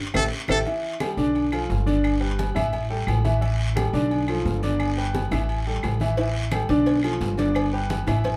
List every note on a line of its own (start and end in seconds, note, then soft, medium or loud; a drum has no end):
0.14 0.27 A1 loud
0.14 0.25 E4 loud
0.14 0.25 G4 medium
0.14 0.25 A4 medium
0.14 0.24 A4 loud
0.14 cowbell medium
0.14 high conga loud
0.14 high timbale loud
0.14 long guiro loud
0.14 claves loud
0.48 0.62 A1 medium
0.48 0.60 E4 loud
0.48 0.60 G4 loud
0.48 0.60 A4 loud
0.48 0.58 A4 loud
0.48 cowbell loud
0.48 high conga loud
0.48 high timbale loud
0.48 long guiro loud
0.48 claves loud
0.66 0.95 E3 medium
0.66 0.95 E4 medium
0.66 0.95 E5 medium
0.66 high conga soft
0.66 low agogo medium
0.66 long guiro medium
0.83 high conga soft
1.00 1.15 G3 medium
1.00 1.15 G4 medium
1.00 1.15 A4 medium
1.00 high conga loud
1.00 low timbale medium
1.00 low agogo loud
1.00 short guiro medium
1.00 claves medium
1.17 1.66 B1 loud
1.17 1.46 D3 loud
1.17 1.46 D4 loud
1.17 1.46 D5 medium
1.17 high conga soft
1.17 short guiro medium
1.35 high conga soft
1.35 low agogo loud
1.35 long guiro medium
1.52 1.80 F3 medium
1.52 1.81 F4 medium
1.52 1.81 A4 medium
1.52 high conga soft
1.52 low agogo loud
1.52 claves medium
1.70 2.50 G1 loud
1.70 high conga soft
1.70 low timbale medium
1.70 short guiro medium
1.86 2.15 D3 medium
1.86 2.15 D4 loud
1.86 2.15 D5 medium
1.86 high conga medium
1.86 low agogo medium
1.86 short guiro medium
2.04 high conga soft
2.04 low agogo loud
2.04 long guiro medium
2.04 claves medium
2.21 2.49 G3 medium
2.21 2.49 G4 medium
2.21 2.49 B4 medium
2.21 high conga soft
2.39 high conga medium
2.39 low timbale medium
2.39 low agogo loud
2.39 short guiro medium
2.55 3.04 A1 loud
2.55 2.83 E3 medium
2.55 2.84 E4 loud
2.55 2.84 E5 loud
2.55 high conga soft
2.55 low conga medium
2.55 low agogo loud
2.55 short guiro medium
2.55 claves medium
2.73 high conga soft
2.73 low conga medium
2.73 low agogo loud
2.73 long guiro medium
2.90 3.18 G3 medium
2.90 3.18 G4 medium
2.90 3.19 A4 medium
2.90 high conga soft
3.07 3.88 A1 loud
3.07 high conga soft
3.07 low timbale medium
3.07 low agogo loud
3.07 short guiro medium
3.07 claves medium
3.25 3.39 E3 medium
3.25 3.39 E4 loud
3.25 3.39 E5 medium
3.25 high conga medium
3.25 low agogo medium
3.25 short guiro medium
3.41 3.70 E3 medium
3.41 3.70 E4 loud
3.41 3.70 E5 medium
3.41 high conga soft
3.41 low agogo medium
3.41 long guiro medium
3.60 high conga soft
3.75 3.90 G3 medium
3.75 3.90 G4 medium
3.75 3.90 A4 medium
3.75 high conga loud
3.75 low timbale medium
3.75 low agogo loud
3.75 short guiro medium
3.75 claves medium
3.93 4.42 B1 loud
3.93 4.22 D3 loud
3.93 4.22 D4 loud
3.93 4.22 D5 medium
3.93 high conga soft
3.93 short guiro medium
4.11 high conga soft
4.11 low agogo medium
4.11 long guiro medium
4.28 4.57 F3 medium
4.28 4.57 F4 medium
4.28 4.57 A4 medium
4.28 low agogo loud
4.28 claves medium
4.45 5.26 G1 loud
4.45 high conga soft
4.45 low timbale medium
4.45 short guiro medium
4.63 4.91 D3 medium
4.63 4.91 D4 medium
4.63 4.91 D5 loud
4.63 high conga medium
4.63 low agogo medium
4.63 short guiro medium
4.80 high conga soft
4.80 low agogo loud
4.80 long guiro medium
4.80 claves medium
4.97 5.25 G3 medium
4.97 5.25 G4 medium
4.97 5.26 B4 medium
4.97 high conga soft
5.14 high conga loud
5.14 low timbale medium
5.14 low agogo medium
5.14 short guiro medium
5.31 5.79 A1 medium
5.31 5.60 E3 medium
5.31 5.60 E4 loud
5.31 5.60 E5 loud
5.31 high conga soft
5.31 low conga loud
5.31 low agogo loud
5.31 short guiro medium
5.31 claves medium
5.49 high conga soft
5.49 low agogo medium
5.49 long guiro medium
5.67 5.95 G3 medium
5.67 5.95 G4 medium
5.67 5.95 A4 medium
5.67 high conga soft
5.83 6.64 A1 medium
5.83 high conga soft
5.83 low timbale medium
5.83 low agogo loud
5.83 short guiro medium
5.83 claves medium
6.00 6.15 E3 loud
6.00 6.15 E4 loud
6.00 6.15 E5 medium
6.00 high conga medium
6.00 low agogo medium
6.00 short guiro medium
6.17 6.46 E3 loud
6.17 6.47 E4 medium
6.17 6.47 E5 medium
6.17 cowbell loud
6.17 high conga soft
6.17 low agogo medium
6.17 long guiro medium
6.34 high conga soft
6.52 6.67 G3 medium
6.52 6.67 G4 medium
6.52 6.67 A4 medium
6.52 cowbell medium
6.52 high conga loud
6.52 low timbale medium
6.52 low agogo loud
6.52 short guiro medium
6.52 claves medium
6.69 7.17 B1 loud
6.69 6.98 D3 loud
6.69 6.98 D4 loud
6.69 6.98 D5 loud
6.69 cowbell medium
6.69 short guiro medium
6.86 cowbell loud
6.86 high conga soft
6.86 low agogo medium
6.86 long guiro medium
7.03 7.32 F3 medium
7.03 7.32 F4 medium
7.03 7.32 A4 medium
7.03 high conga soft
7.03 low agogo loud
7.03 claves medium
7.20 8.01 G1 loud
7.20 cowbell medium
7.20 high conga soft
7.20 low timbale medium
7.20 short guiro medium
7.38 7.66 D3 medium
7.38 7.67 D4 medium
7.38 7.67 D5 loud
7.38 cowbell medium
7.38 high conga medium
7.38 low agogo medium
7.38 short guiro medium
7.55 cowbell medium
7.55 high conga soft
7.55 low agogo loud
7.55 long guiro medium
7.55 claves medium
7.73 8.01 G3 medium
7.73 8.01 G4 medium
7.73 8.02 B4 medium
7.73 high conga soft
7.90 cowbell medium
7.90 high conga loud
7.90 low timbale medium
7.90 low agogo medium
7.90 short guiro medium
8.07 8.37 A1 loud
8.07 8.35 E3 medium
8.07 8.36 E4 loud
8.07 8.36 E5 loud
8.07 cowbell medium
8.07 high conga soft
8.07 low conga loud
8.07 low agogo loud
8.07 short guiro medium
8.07 claves medium
8.24 cowbell loud
8.24 high conga soft
8.24 low conga medium
8.24 low agogo medium
8.24 long guiro medium